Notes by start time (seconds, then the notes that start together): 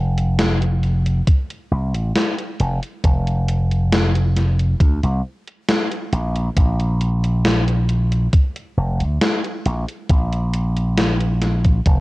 Already playing: F1
0.18 closed hi-hat
0.39 snare, closed hi-hat
0.62 closed hi-hat
0.83 closed hi-hat
1.06 closed hi-hat
1.27 kick, closed hi-hat
1.50 closed hi-hat
1.71 C2
1.94 A1, closed hi-hat
2.16 snare, closed hi-hat
2.38 closed hi-hat
2.60 F1, closed hi-hat
2.83 closed hi-hat
3.04 F1, kick, closed hi-hat
3.27 closed hi-hat
3.48 closed hi-hat
3.71 closed hi-hat
3.92 snare, closed hi-hat
4.15 closed hi-hat
4.36 snare, closed hi-hat
4.59 closed hi-hat
4.80 D2, kick, closed hi-hat
5.03 C2, closed hi-hat
5.47 closed hi-hat
5.68 snare, closed hi-hat
5.91 closed hi-hat
6.12 A#1, closed hi-hat
6.36 closed hi-hat
6.57 A#1, kick, closed hi-hat
6.80 closed hi-hat
7.01 closed hi-hat
7.24 closed hi-hat
7.45 snare, closed hi-hat
7.68 closed hi-hat
7.89 closed hi-hat
8.12 closed hi-hat
8.33 kick, closed hi-hat
8.56 closed hi-hat
8.77 F1
9.00 D2, closed hi-hat
9.21 snare, closed hi-hat
9.44 closed hi-hat
9.65 A#1, closed hi-hat
9.88 closed hi-hat
10.09 A#1, kick, closed hi-hat
10.33 closed hi-hat
10.54 closed hi-hat
10.77 closed hi-hat
10.98 snare, closed hi-hat
11.21 closed hi-hat
11.42 snare, closed hi-hat
11.64 kick, closed hi-hat
11.86 F1, kick, closed hi-hat